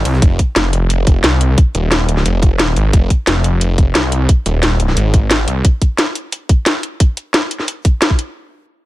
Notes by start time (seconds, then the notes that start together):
0.05 C2, closed hi-hat, ride
0.14 snare
0.22 F1, kick, closed hi-hat
0.39 kick, closed hi-hat
0.56 F1, snare, closed hi-hat
0.73 closed hi-hat
0.90 closed hi-hat
1.07 F1, kick, closed hi-hat
1.24 C2, snare, closed hi-hat
1.41 closed hi-hat
1.58 kick, closed hi-hat
1.75 D#1, closed hi-hat
1.92 snare, closed hi-hat
2.09 closed hi-hat
2.17 snare
2.26 F1, closed hi-hat
2.43 kick, closed hi-hat
2.60 snare, closed hi-hat
2.76 G#1, closed hi-hat
2.93 F1, kick, closed hi-hat
3.10 kick, closed hi-hat
3.27 F1, snare, closed hi-hat
3.44 closed hi-hat
3.61 closed hi-hat
3.78 F1, kick, closed hi-hat
3.95 C2, snare, closed hi-hat
4.12 closed hi-hat
4.29 kick, closed hi-hat
4.46 D#1, closed hi-hat
4.63 snare, closed hi-hat
4.80 closed hi-hat
4.88 snare
4.97 G#1, closed hi-hat
5.14 kick, closed hi-hat
5.31 snare, closed hi-hat
5.48 C2, closed hi-hat
5.65 kick, closed hi-hat
5.82 kick, closed hi-hat
5.99 snare, closed hi-hat
6.15 closed hi-hat
6.32 closed hi-hat
6.49 kick, closed hi-hat
6.66 snare, closed hi-hat
6.83 closed hi-hat
7.00 kick, closed hi-hat
7.17 closed hi-hat
7.34 snare, closed hi-hat
7.51 closed hi-hat
7.60 snare
7.68 closed hi-hat
7.85 kick, closed hi-hat
8.02 snare, closed hi-hat
8.10 kick
8.19 closed hi-hat